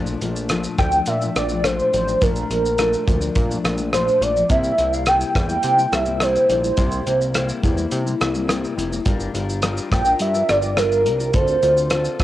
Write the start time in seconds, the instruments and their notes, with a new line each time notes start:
Already playing: analog synth bass A#1, steel-string acoustic guitar A#2 F3 A3 D4
0.06 shaker
0.21 analog synth bass A#1, steel-string acoustic guitar A#2 F3 A3 D4, closed hi-hat, shaker
0.36 shaker
0.49 steel-string acoustic guitar A#2 F3 A3 D4, cross-stick, closed hi-hat, shaker
0.64 shaker
0.78 analog synth bass D2, steel-string acoustic guitar A#2 F3 A3 D4, soft synth lead G5, kick, cross-stick, closed hi-hat, shaker
0.92 steel-string acoustic guitar F3 A3 D4, shaker
1.06 analog synth bass A#2, soft synth lead E5, closed hi-hat, shaker
1.21 steel-string acoustic guitar F3 A3 D4, shaker
1.36 analog synth bass A#1, soft synth lead D5, cross-stick, closed hi-hat, shaker
1.49 steel-string acoustic guitar F3 A3 D4, shaker
1.64 steel-string acoustic guitar A#2 F3 A3 D4, soft synth lead C5, cross-stick, closed hi-hat, shaker
1.79 shaker
1.92 analog synth bass A1, steel-string acoustic guitar A#2 F3 A3 D4, soft synth lead C5, closed hi-hat, shaker
2.06 steel-string acoustic guitar F3 A3 D4, shaker
2.20 analog synth bass A#1, steel-string acoustic guitar A#2 F3 A3 D4, soft synth lead A#4, kick, closed hi-hat, shaker
2.36 shaker
2.49 analog synth bass A#1, steel-string acoustic guitar A#2 F3 A3 D4, closed hi-hat, shaker
2.66 shaker
2.78 steel-string acoustic guitar A#2 F3 A3 D4, cross-stick, closed hi-hat, shaker
2.93 shaker
3.06 analog synth bass D2, steel-string acoustic guitar A#2 F3 A3 D4, kick, closed hi-hat, shaker
3.21 steel-string acoustic guitar F3 A3 D4, shaker
3.35 analog synth bass A#2, kick, closed hi-hat, shaker
3.49 steel-string acoustic guitar F3 A3 D4, shaker
3.64 analog synth bass A#1, cross-stick, closed hi-hat, shaker
3.78 steel-string acoustic guitar F3 A3 D4, shaker
3.93 steel-string acoustic guitar A#2 F3 A3 D4, soft synth lead C5, cross-stick, closed hi-hat, shaker
4.08 shaker
4.20 analog synth bass A#1, steel-string acoustic guitar A#2 F3 A3 D4, soft synth lead D5, closed hi-hat, shaker
4.34 steel-string acoustic guitar F3 A3 D4, shaker
4.48 analog synth bass C2, steel-string acoustic guitar C3 G3 A#3 E4, soft synth lead E5, kick, closed hi-hat, shaker
4.64 shaker
4.77 analog synth bass C2, steel-string acoustic guitar C3 G3 A#3 E4, closed hi-hat, shaker
4.93 soft synth lead F5, shaker
5.06 steel-string acoustic guitar C3 G3 A#3 E4, soft synth lead G5, cross-stick, closed hi-hat, shaker
5.21 shaker
5.35 analog synth bass E2, steel-string acoustic guitar C3 G3 A#3 E4, soft synth lead G5, kick, cross-stick, closed hi-hat, shaker
5.48 steel-string acoustic guitar G3 A#3 E4, shaker
5.63 analog synth bass C3, closed hi-hat, shaker
5.77 steel-string acoustic guitar G3 A#3 E4, shaker
5.92 analog synth bass C2, soft synth lead E5, cross-stick, closed hi-hat, shaker
6.06 steel-string acoustic guitar G3 A#3 E4, shaker
6.19 steel-string acoustic guitar C3 G3 A#3 E4, soft synth lead C5, cross-stick, closed hi-hat, shaker
6.36 shaker
6.49 analog synth bass A#1, steel-string acoustic guitar C3 G3 A#3 E4, soft synth lead C5, closed hi-hat, shaker
6.63 steel-string acoustic guitar G3 A#3 E4, shaker
6.77 analog synth bass C2, steel-string acoustic guitar C3 G3 A#3 E4, kick, closed hi-hat, shaker
6.92 shaker
7.05 analog synth bass C2, steel-string acoustic guitar C3 G3 A#3 E4, closed hi-hat, shaker
7.21 shaker
7.33 steel-string acoustic guitar C3 G3 A#3 E4, cross-stick, closed hi-hat, shaker
7.49 shaker
7.62 analog synth bass E2, steel-string acoustic guitar C3 G3 A#3 E4, kick, closed hi-hat, shaker
7.76 steel-string acoustic guitar G3 A#3 E4, shaker
7.91 analog synth bass C3, closed hi-hat, shaker
8.05 steel-string acoustic guitar G3 A#3 E4, shaker
8.21 analog synth bass C2, cross-stick, closed hi-hat, shaker
8.34 steel-string acoustic guitar G3 A#3 E4, shaker
8.47 steel-string acoustic guitar C3 G3 A#3 E4, cross-stick, closed hi-hat, shaker
8.64 shaker
8.76 analog synth bass F1, steel-string acoustic guitar C3 G3 A#3 E4, closed hi-hat, shaker
8.91 steel-string acoustic guitar G3 A#3 E4, shaker
9.05 analog synth bass G1, steel-string acoustic guitar G3 D4 F4 A#4, kick, closed hi-hat, shaker
9.20 shaker
9.33 analog synth bass G1, steel-string acoustic guitar G3 D4 F4 A#4, closed hi-hat, shaker
9.49 shaker
9.62 steel-string acoustic guitar G3 D4 F4 A#4, cross-stick, closed hi-hat, shaker
9.77 shaker
9.90 analog synth bass A#1, steel-string acoustic guitar G3 D4 F4 A#4, soft synth lead G5, kick, cross-stick, closed hi-hat, shaker
10.04 steel-string acoustic guitar D4 F4 A#4, shaker
10.19 analog synth bass G2, soft synth lead E5, closed hi-hat, shaker
10.33 steel-string acoustic guitar D4 F4 A#4, shaker
10.49 analog synth bass G1, soft synth lead D5, cross-stick, closed hi-hat, shaker
10.61 steel-string acoustic guitar D4 F4 A#4, shaker
10.76 steel-string acoustic guitar G3 D4 F4 A#4, soft synth lead A#4, cross-stick, closed hi-hat, shaker
10.92 shaker
11.04 analog synth bass C2, steel-string acoustic guitar G3 D4 F4 A#4, closed hi-hat, shaker
11.18 steel-string acoustic guitar D4 F4 A#4, shaker
11.33 analog synth bass D2, steel-string acoustic guitar D3 C4 F4 A4, soft synth lead C5, kick, closed hi-hat, shaker
11.48 shaker
11.61 analog synth bass D2, steel-string acoustic guitar D3 C4 F4 A4, closed hi-hat, shaker
11.77 shaker
11.90 steel-string acoustic guitar D3 C4 F4 A4, cross-stick, closed hi-hat, shaker
12.05 shaker
12.19 analog synth bass F2, steel-string acoustic guitar D3 C4 F4, kick, cross-stick, closed hi-hat, shaker